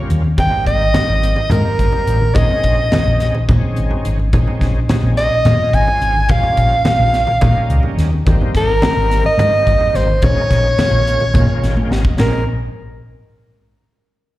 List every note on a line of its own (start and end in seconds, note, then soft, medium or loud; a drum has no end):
0.00 0.22 G3 medium
0.00 0.22 A#3 medium
0.00 0.23 C#4 medium
0.00 0.23 F4 medium
0.10 0.35 D#2 medium
0.10 closed hi-hat medium
0.24 high conga medium
0.37 0.50 G#1 medium
0.37 0.84 G3 medium
0.37 0.85 A#3 medium
0.37 0.85 C4 medium
0.37 0.85 D#4 medium
0.37 0.65 G5 loud
0.37 kick loud
0.37 closed hi-hat medium
0.37 muted conga medium
0.51 low conga medium
0.66 0.91 G#1 medium
0.66 1.47 D#5 loud
0.66 kick medium
0.66 closed hi-hat medium
0.80 low conga soft
0.94 1.41 G3 medium
0.94 1.41 A#3 soft
0.94 1.41 C4 medium
0.94 1.42 D#4 medium
0.94 snare loud
0.94 closed hi-hat medium
0.94 high conga medium
0.94 low conga loud
1.08 1.33 G#1 medium
1.23 closed hi-hat medium
1.36 muted conga medium
1.50 1.64 G#2 medium
1.50 2.20 G3 medium
1.50 2.20 A#3 medium
1.50 2.21 C4 medium
1.50 2.21 D#4 medium
1.50 2.36 A#4 medium
1.50 closed hi-hat medium
1.50 high conga medium
1.50 low conga medium
1.79 1.91 G1 medium
1.79 kick medium
1.79 closed hi-hat medium
1.92 low conga medium
2.07 2.32 A1 medium
2.07 closed hi-hat medium
2.07 low conga soft
2.21 high conga medium
2.35 2.48 A#1 medium
2.35 2.82 G#3 medium
2.35 2.82 C4 medium
2.35 2.83 C#4 medium
2.35 2.83 D#4 medium
2.35 3.48 D#5 medium
2.35 kick loud
2.35 closed hi-hat medium
2.35 muted conga medium
2.35 low conga soft
2.50 low conga medium
2.64 2.88 A#1 medium
2.64 kick medium
2.64 closed hi-hat medium
2.79 low conga soft
2.91 3.38 G#3 medium
2.91 3.38 C4 medium
2.91 3.39 C#4 medium
2.91 3.39 D#4 medium
2.91 snare medium
2.91 closed hi-hat medium
2.91 high conga loud
2.91 low conga loud
3.06 3.31 A#1 medium
3.06 low conga soft
3.20 snare soft
3.20 closed hi-hat medium
3.20 low conga soft
3.35 muted conga medium
3.48 3.61 A#2 medium
3.48 4.18 G#3 medium
3.48 4.18 C4 medium
3.48 4.18 C#4 medium
3.48 4.19 D#4 medium
3.48 kick loud
3.48 closed hi-hat medium
3.48 high conga medium
3.48 low conga medium
3.76 3.89 G#1 medium
3.76 closed hi-hat medium
3.91 muted fingered electric bass stroke soft
3.91 low conga medium
4.05 4.29 G#1 medium
4.05 closed hi-hat medium
4.05 low conga soft
4.19 high conga medium
4.19 low conga soft
4.33 4.45 A#1 medium
4.33 4.79 G#3 medium
4.33 4.80 C4 medium
4.33 4.80 C#4 medium
4.33 4.80 D#4 medium
4.33 kick loud
4.33 closed hi-hat medium
4.33 muted conga medium
4.47 low conga medium
4.61 4.85 A#1 medium
4.61 kick medium
4.61 snare soft
4.61 closed hi-hat medium
4.75 low conga soft
4.89 5.35 G#3 medium
4.89 5.36 C4 medium
4.89 5.36 C#4 medium
4.89 5.36 D#4 medium
4.89 snare loud
4.89 closed hi-hat medium
4.89 high conga medium
4.89 low conga medium
5.03 5.28 A#1 medium
5.17 5.76 D#5 loud
5.17 snare soft
5.17 closed hi-hat medium
5.45 5.57 A#2 medium
5.45 6.15 G#3 medium
5.45 6.15 C4 medium
5.45 6.16 C#4 medium
5.45 6.16 F4 medium
5.45 snare soft
5.45 closed hi-hat medium
5.45 high conga medium
5.45 low conga loud
5.73 5.86 G#1 medium
5.73 6.32 G#5 loud
5.73 kick medium
5.73 closed hi-hat medium
5.88 low conga medium
6.01 6.26 G#1 medium
6.01 closed hi-hat medium
6.01 low conga soft
6.16 high conga medium
6.29 6.42 A#1 medium
6.29 6.76 G3 medium
6.29 6.76 A#3 medium
6.29 6.76 C#4 medium
6.29 6.76 F4 medium
6.29 7.99 F5 medium
6.29 kick loud
6.29 closed hi-hat medium
6.29 muted conga medium
6.43 low conga medium
6.57 6.82 A#1 medium
6.57 kick medium
6.57 closed hi-hat medium
6.85 7.32 G3 medium
6.85 7.32 A#3 soft
6.85 7.33 C#4 medium
6.85 7.33 F4 medium
6.85 snare loud
6.85 closed hi-hat medium
6.85 high conga medium
6.85 low conga medium
7.00 7.24 A#1 medium
7.14 snare soft
7.14 closed hi-hat medium
7.27 muted conga medium
7.41 7.54 A#2 medium
7.41 8.11 G3 medium
7.41 8.11 A#3 medium
7.41 8.11 C#4 medium
7.41 8.11 D#4 medium
7.41 kick medium
7.41 closed hi-hat medium
7.41 high conga medium
7.41 low conga medium
7.70 7.82 C#2 medium
7.70 closed hi-hat medium
7.83 low conga medium
7.97 8.22 D#2 medium
7.97 snare soft
7.97 closed hi-hat medium
7.97 low conga soft
8.13 high conga medium
8.25 8.39 G#1 medium
8.25 8.72 G3 medium
8.25 8.72 A#3 medium
8.25 8.73 C4 medium
8.25 8.73 D#4 loud
8.25 kick loud
8.25 closed hi-hat medium
8.25 muted conga medium
8.41 low conga medium
8.54 8.78 G#1 medium
8.54 9.21 A#4 loud
8.54 kick medium
8.54 snare soft
8.54 closed hi-hat medium
8.68 low conga soft
8.82 9.28 G3 medium
8.82 9.28 A#3 medium
8.82 9.28 C4 medium
8.82 9.29 D#4 medium
8.82 snare loud
8.82 closed hi-hat medium
8.82 high conga medium
8.82 low conga medium
8.97 9.21 G#1 medium
9.11 snare soft
9.11 closed hi-hat medium
9.25 9.97 D#5 loud
9.25 muted conga medium
9.38 9.50 G#2 medium
9.38 10.07 G3 medium
9.38 10.08 A#3 medium
9.38 10.08 C4 medium
9.38 10.08 D#4 medium
9.38 closed hi-hat medium
9.38 high conga medium
9.38 low conga medium
9.67 9.79 G1 medium
9.67 kick medium
9.67 closed hi-hat medium
9.80 muted fingered electric bass stroke soft
9.80 low conga medium
9.94 10.18 G#1 medium
9.94 10.25 C5 medium
9.94 snare soft
9.94 closed hi-hat medium
10.09 high conga medium
10.22 10.35 A#1 medium
10.22 10.68 G#3 medium
10.22 10.68 A#3 medium
10.22 10.69 C#4 medium
10.22 10.69 D#4 medium
10.22 11.91 C#5 medium
10.22 kick loud
10.22 closed hi-hat medium
10.22 muted conga medium
10.22 low conga soft
10.36 low conga medium
10.51 10.74 A#1 medium
10.51 kick medium
10.51 snare soft
10.51 closed hi-hat medium
10.65 low conga soft
10.77 11.24 G#3 medium
10.77 11.24 A#3 medium
10.77 11.24 C#4 soft
10.77 11.25 F4 medium
10.77 snare loud
10.77 closed hi-hat medium
10.77 high conga loud
10.77 low conga medium
10.91 11.16 A#1 medium
10.91 low conga soft
11.07 closed hi-hat medium
11.07 low conga soft
11.21 muted conga medium
11.34 11.46 A#2 medium
11.34 12.03 G#3 medium
11.34 12.03 A#3 medium
11.34 12.03 C#4 medium
11.34 12.04 F4 medium
11.34 kick loud
11.34 closed hi-hat medium
11.34 high conga medium
11.34 low conga medium
11.62 11.75 G#1 medium
11.62 11.88 G5 medium
11.62 snare soft
11.62 closed hi-hat medium
11.76 muted fingered electric bass stroke soft
11.76 high tom medium
11.76 low conga medium
11.90 12.14 G#1 medium
11.90 12.16 D#5 medium
11.90 snare medium
12.04 kick loud
12.04 high conga medium
12.04 low conga soft
12.18 12.44 A#1 medium
12.18 12.44 G#3 medium
12.18 12.44 C4 medium
12.18 12.44 C#4 medium
12.18 12.45 D#4 medium
12.18 12.45 A#4 medium
12.18 snare loud
12.18 floor tom loud
12.18 ride bell medium
12.18 muted conga medium